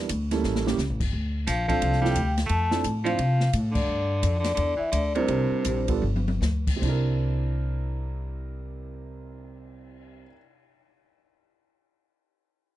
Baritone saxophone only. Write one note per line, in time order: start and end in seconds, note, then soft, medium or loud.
1.47 1.67 F3 medium
1.68 2.01 F3 medium
2.02 2.35 G3 medium
2.46 2.80 A3 medium
3.04 3.49 F3 medium
3.71 4.39 D3 medium
4.40 4.53 D3 medium
4.54 4.76 D3 medium
4.77 4.90 E3 medium
4.91 5.13 D3 medium
5.15 5.85 C3 medium